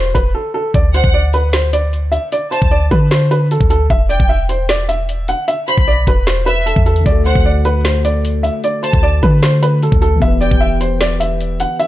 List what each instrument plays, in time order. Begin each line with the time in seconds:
Already playing: 808-style bass E1, felt piano C5
0.15 808-style bass E1, felt piano B4, kick, closed hi-hat
0.35 felt piano A4
0.54 felt piano A4
0.74 808-style bass D2, felt piano D5, kick, closed hi-hat
0.94 felt piano C5, violin section F#5, closed hi-hat
1.04 808-style bass D2, kick
1.14 felt piano D5
1.33 felt piano B4, closed hi-hat
1.53 felt piano C5, snare, closed hi-hat
1.73 felt piano D5, closed hi-hat
1.93 closed hi-hat
2.12 felt piano E5, closed hi-hat
2.32 felt piano D5, closed hi-hat
2.51 felt piano C5, violin section A5, closed hi-hat
2.62 808-style bass D2, kick
2.71 felt piano D5
2.91 808-style bass D3, felt piano B4, kick, closed hi-hat
3.11 felt piano C5, snare, closed hi-hat
3.31 felt piano B4, closed hi-hat
3.51 felt piano A4, closed hi-hat
3.61 808-style bass D2, kick
3.70 felt piano A4, closed hi-hat
3.90 808-style bass E1, felt piano E5, kick, closed hi-hat
4.09 felt piano D5, violin section G5, closed hi-hat
4.20 808-style bass E1, kick
4.29 felt piano E5
4.49 felt piano C5, closed hi-hat
4.69 felt piano D5, snare, closed hi-hat
4.89 felt piano E5, closed hi-hat
5.09 closed hi-hat
5.28 felt piano F#5, closed hi-hat
5.48 felt piano E5, closed hi-hat
5.68 felt piano C5, violin section B5, closed hi-hat
5.78 808-style bass B1, kick
5.88 felt piano D5
6.07 808-style bass E1, felt piano B4, kick, closed hi-hat
6.27 felt piano C5, snare, closed hi-hat
6.46 felt piano B4, violin section E5, closed hi-hat
6.66 felt piano A4, closed hi-hat
6.76 808-style bass E2, kick
6.86 felt piano A4, closed hi-hat
6.96 closed hi-hat
7.00 synth keys D3 A3
7.06 808-style bass D2, synth keys F#4, felt piano D5, kick, closed hi-hat
7.12 synth keys A4
7.25 felt piano C5, violin section F#5, closed hi-hat
7.35 808-style bass D2, kick
7.45 felt piano D5
7.65 felt piano B4, closed hi-hat
7.84 felt piano C5, snare, closed hi-hat
8.05 felt piano D5, closed hi-hat
8.25 closed hi-hat
8.43 felt piano E5, closed hi-hat
8.64 felt piano D5, closed hi-hat
8.83 felt piano C5, violin section A5, closed hi-hat
8.93 808-style bass D2, kick
9.03 felt piano D5
9.23 808-style bass D3, felt piano B4, kick, closed hi-hat
9.43 felt piano C5, snare, closed hi-hat
9.63 felt piano B4, closed hi-hat
9.83 felt piano A4, closed hi-hat
9.92 808-style bass D2, kick
10.02 felt piano A4, closed hi-hat
10.16 synth keys E3 B3
10.22 808-style bass E1, synth keys G4, felt piano E5, kick, closed hi-hat
10.27 synth keys B4
10.41 felt piano D5, violin section G5, closed hi-hat
10.51 808-style bass E1, kick
10.61 felt piano E5
10.81 felt piano C5, closed hi-hat
11.00 felt piano D5, snare, closed hi-hat
11.20 felt piano E5, closed hi-hat
11.41 closed hi-hat
11.60 felt piano F#5, closed hi-hat
11.79 felt piano E5, closed hi-hat